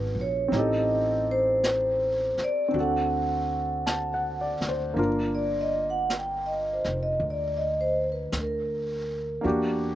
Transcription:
Already playing: upright bass G#1, grand piano B3 D4 F#4 G#4, vibraphone B4
0.15 upright bass A#1
0.21 vibraphone C#5
0.48 upright bass A1, grand piano C4 D#4
0.52 grand piano G4, vibraphone D#5, brush sweep, snare
0.59 grand piano A4
1.31 vibraphone C5
1.64 brush sweep, snare, hi-hat pedal
2.37 muted upright bass stroke, snare
2.44 vibraphone D5
2.68 grand piano C4 D4
2.74 upright bass D2, grand piano F#4, brush sweep
2.79 grand piano A4, vibraphone F#5
3.86 grand piano A5, brush sweep, snare, hi-hat pedal
4.14 grand piano F#5
4.41 grand piano D5
4.61 upright bass D2, snare
4.69 grand piano C5
4.94 upright bass G1, grand piano A#3 D4
4.98 grand piano F4 A#4, brush sweep
5.35 vibraphone D5
5.61 vibraphone D#5
5.90 vibraphone F#5
6.10 brush sweep, snare, hi-hat pedal
6.18 vibraphone G5
6.46 vibraphone D#5
6.73 vibraphone C5
6.84 upright bass F1, snare
7.03 vibraphone D#5
7.20 upright bass D2, brush sweep
7.30 vibraphone D5
7.57 vibraphone D#5
7.81 vibraphone C5
8.12 vibraphone B4
8.32 upright bass D2, brush sweep, snare, hi-hat pedal
8.40 vibraphone A#4
9.41 upright bass E2, grand piano A#3 D4 F#4, brush sweep
9.46 grand piano G4

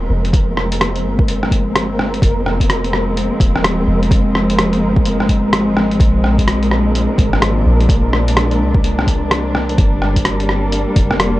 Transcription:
Already playing: string section F3 G#3 C4, synth texture A#3 A#4
0.10 808-style bass F1
0.25 closed hi-hat
0.33 kick, closed hi-hat
0.57 cross-stick
0.72 closed hi-hat
0.81 cross-stick, closed hi-hat
0.96 closed hi-hat
1.04 808-style bass G1
1.19 kick
1.28 closed hi-hat
1.43 cross-stick
1.51 kick, closed hi-hat
1.76 cross-stick, closed hi-hat
1.99 cross-stick
2.14 closed hi-hat
2.22 808-style bass F1, kick, closed hi-hat
2.46 cross-stick
2.60 kick, closed hi-hat
2.70 cross-stick, closed hi-hat
2.84 closed hi-hat
2.93 cross-stick
3.17 closed hi-hat
3.40 808-style bass D#1, kick, closed hi-hat
3.56 cross-stick
3.64 cross-stick, closed hi-hat
3.87 808-style bass F1
4.03 closed hi-hat
4.11 kick, closed hi-hat
4.35 cross-stick
4.50 closed hi-hat
4.59 cross-stick, closed hi-hat
4.73 closed hi-hat
4.82 808-style bass G1
4.96 kick
5.05 closed hi-hat
5.20 cross-stick
5.29 kick, closed hi-hat
5.53 cross-stick, closed hi-hat
5.77 808-style bass G#1, cross-stick
5.91 closed hi-hat
5.99 808-style bass A#1, string section A#2, kick, closed hi-hat
6.24 cross-stick
6.36 string section D4, kick, closed hi-hat
6.48 cross-stick, closed hi-hat
6.63 closed hi-hat
6.71 cross-stick
6.95 closed hi-hat
7.18 808-style bass G#1, kick, closed hi-hat
7.33 cross-stick
7.42 cross-stick, closed hi-hat
7.66 808-style bass A#1
7.80 closed hi-hat
7.89 kick, closed hi-hat
8.13 cross-stick
8.28 closed hi-hat
8.37 cross-stick, closed hi-hat
8.51 closed hi-hat
8.60 808-style bass C2
8.75 kick
8.84 closed hi-hat
8.99 cross-stick
9.07 kick, closed hi-hat
9.31 cross-stick, closed hi-hat
9.55 cross-stick
9.69 closed hi-hat
9.78 808-style bass G1, string section G3, kick, closed hi-hat
10.02 cross-stick
10.16 kick, closed hi-hat
10.25 string section A#3, cross-stick, closed hi-hat
10.40 closed hi-hat
10.49 cross-stick
10.72 closed hi-hat
10.96 808-style bass F1, kick, closed hi-hat
11.11 cross-stick
11.20 cross-stick, closed hi-hat

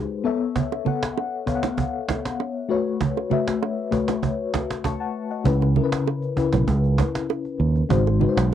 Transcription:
Already playing: fm electric piano G#3 D#4 F#4 G4 G#4 B4 C5
0.24 fm electric piano B3 A4 C#5 E5
0.56 cajon bass, low conga
0.72 high bongo
0.85 fm electric piano B3 A4 C#5 F#5, low conga
1.03 cajon slap
1.18 high bongo
1.46 fm electric piano B3 A4 C#5 F5, cajon bass
1.55 fm electric piano F#5
1.63 cajon slap, low bongo
1.78 cajon bass, low conga
2.09 cajon bass, cajon slap, low bongo
2.25 cajon slap
2.40 high bongo
2.69 fm electric piano A3 F#4 B4 C#5
3.01 cajon bass, low conga
3.17 high bongo
3.30 fm electric piano A3 F#4 B4 E5, low conga
3.47 cajon slap
3.62 high bongo
3.91 fm electric piano A3 F#4 B4 C#5, cajon bass
4.08 cajon slap, low bongo
4.22 cajon bass, low conga
4.54 cajon bass, cajon slap, low bongo
4.70 cajon slap
4.84 fm electric piano A5 C#6, cajon bass, high bongo
5.00 fm electric piano F#5 A5
5.31 fm electric piano D#5 F#5
5.44 fingered electric bass C#2, fm electric piano C#3 C#4 E4 B4, cajon bass, low conga
5.61 cajon slap, high bongo
5.75 fm electric piano C#3 C#4 E4 A#4, low conga
5.84 fm electric piano B4
5.92 cajon slap
6.06 cajon slap, high bongo
6.22 cajon slap
6.36 fm electric piano C#3 C#4 E4 B4, cajon bass
6.53 fingered electric bass B1, cajon slap, low bongo
6.68 fingered electric bass C#2, cajon bass, low conga
6.84 cajon slap
6.98 cajon bass, cajon slap, low bongo
7.15 cajon slap
7.29 cajon slap, high bongo
7.45 cajon slap
7.60 fingered electric bass D#2
7.76 cajon slap
7.89 fingered electric bass G#1, fm electric piano G#3 D#4 F#4 C5, cajon bass, low conga
8.06 cajon slap, high bongo
8.20 fm electric piano G#3 D#4 F#4 B4, low conga
8.29 fm electric piano C5
8.37 fingered electric bass B1, cajon slap

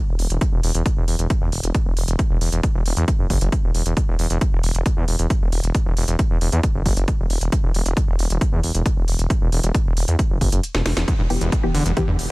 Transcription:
0.08 detuned saw bass E1
0.19 detuned saw bass E1, open hi-hat
0.30 detuned saw bass E1, closed hi-hat
0.41 kick, closed hi-hat
0.52 detuned saw bass E1
0.63 detuned saw bass E1, open hi-hat
0.75 detuned saw bass E1, closed hi-hat
0.86 kick, closed hi-hat
0.97 detuned saw bass E1
1.08 detuned saw bass E1, open hi-hat
1.19 detuned saw bass E1, closed hi-hat
1.30 kick, closed hi-hat
1.41 detuned saw bass E2
1.52 detuned saw bass E1, open hi-hat
1.63 detuned saw bass E1, closed hi-hat
1.75 kick, closed hi-hat
1.86 detuned saw bass E1
1.97 detuned saw bass E1, open hi-hat
2.08 detuned saw bass E1, closed hi-hat
2.19 kick, closed hi-hat
2.30 detuned saw bass E1
2.41 detuned saw bass E1, open hi-hat
2.52 detuned saw bass E1, closed hi-hat
2.63 kick, closed hi-hat
2.75 detuned saw bass E1
2.86 detuned saw bass E1, open hi-hat
2.97 detuned saw bass E2, closed hi-hat
3.08 kick, closed hi-hat
3.19 detuned saw bass F#1
3.30 detuned saw bass F#1, kick, open hi-hat
3.41 detuned saw bass F#1, closed hi-hat
3.52 kick, closed hi-hat
3.64 detuned saw bass E1
3.75 detuned saw bass E1, open hi-hat
3.86 detuned saw bass E1, closed hi-hat
3.97 kick, closed hi-hat
4.08 detuned saw bass E1
4.19 detuned saw bass E1, open hi-hat
4.30 detuned saw bass E1, closed hi-hat
4.41 kick, closed hi-hat
4.52 detuned saw bass E1
4.63 detuned saw bass E1, open hi-hat
4.75 detuned saw bass E1, closed hi-hat
4.86 kick, closed hi-hat
4.97 detuned saw bass E2
5.08 detuned saw bass E1, open hi-hat
5.19 detuned saw bass E1, closed hi-hat
5.30 kick, closed hi-hat
5.41 detuned saw bass E1
5.52 detuned saw bass E1, open hi-hat
5.63 detuned saw bass E1, closed hi-hat
5.75 kick, closed hi-hat
5.86 detuned saw bass E1
5.97 detuned saw bass E1, open hi-hat
6.08 detuned saw bass E1, closed hi-hat
6.19 kick, closed hi-hat
6.30 detuned saw bass E1
6.41 detuned saw bass E1, open hi-hat
6.52 detuned saw bass E2, closed hi-hat
6.63 kick, closed hi-hat
6.75 detuned saw bass F#1
6.86 detuned saw bass F#1, kick, open hi-hat
6.97 detuned saw bass F#1, closed hi-hat
7.08 kick, closed hi-hat
7.19 detuned saw bass E1
7.30 detuned saw bass E1, open hi-hat
7.41 detuned saw bass E1, closed hi-hat
7.52 kick, closed hi-hat
7.63 detuned saw bass E1
7.74 detuned saw bass E1, open hi-hat
7.86 detuned saw bass E1, closed hi-hat
7.97 kick, closed hi-hat
8.08 detuned saw bass E1
8.19 detuned saw bass E1, open hi-hat
8.30 detuned saw bass E1, closed hi-hat
8.41 kick, closed hi-hat
8.52 detuned saw bass E2
8.63 detuned saw bass E1, open hi-hat
8.75 detuned saw bass E1, closed hi-hat
8.86 kick, closed hi-hat
8.97 detuned saw bass E1
9.08 detuned saw bass E1, open hi-hat
9.19 detuned saw bass E1, closed hi-hat
9.30 kick, closed hi-hat
9.41 detuned saw bass E1
9.52 detuned saw bass E1, open hi-hat
9.63 detuned saw bass E1, closed hi-hat
9.75 kick, closed hi-hat
9.86 detuned saw bass E1
9.97 detuned saw bass E1, open hi-hat
10.08 detuned saw bass E2, closed hi-hat
10.19 kick, closed hi-hat
10.30 detuned saw bass F#1
10.41 detuned saw bass F#1, kick, open hi-hat
10.52 detuned saw bass F#1, closed hi-hat
10.63 closed hi-hat
10.74 detuned saw bass E1, snare
10.86 detuned saw bass E1, snare, open hi-hat
10.97 detuned saw bass E1, snare, closed hi-hat
11.08 acid bass E2, kick, closed hi-hat
11.19 detuned saw bass E1, acid bass G2
11.30 detuned saw bass E1, synth stab E3 B3 G4, open hi-hat
11.41 detuned saw bass E1, acid bass E2, closed hi-hat
11.52 kick, closed hi-hat
11.63 detuned saw bass E1, synth stab E3 B3 G4
11.74 detuned saw bass E1, acid bass D3, open hi-hat
11.86 detuned saw bass E1, acid bass E2, closed hi-hat
11.97 acid bass E2, synth stab E3 B3 G4, kick, closed hi-hat
12.08 detuned saw bass E2, acid bass G2
12.19 detuned saw bass E1, open hi-hat

